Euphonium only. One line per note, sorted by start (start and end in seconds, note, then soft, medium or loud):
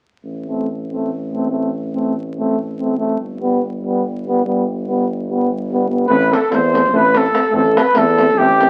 0.48 0.68 A3 soft
0.93 1.12 A3 soft
1.32 1.50 A3 soft
1.51 1.70 A3 soft
1.95 2.14 A3 soft
2.39 2.58 A3 medium
2.80 2.97 A3 soft
2.98 3.17 A3 medium
3.41 3.60 G3 soft
3.83 4.03 G3 soft
4.26 4.44 G3 soft
4.45 4.64 G3 soft
4.89 5.07 G3 soft
5.30 5.48 G3 soft
5.71 5.89 G3 soft
5.89 6.08 G3 soft
6.09 6.18 A3 medium
6.33 6.40 A3 medium
6.52 6.61 A3 medium
6.74 6.82 A3 medium
6.93 7.02 A3 medium
7.13 7.21 A3 medium
7.33 7.40 A3 medium
7.50 7.60 A3 medium
7.74 7.82 A3 medium
7.94 8.04 A3 medium
8.18 8.26 A3 medium
8.38 8.46 A3 medium
8.60 8.67 A3 medium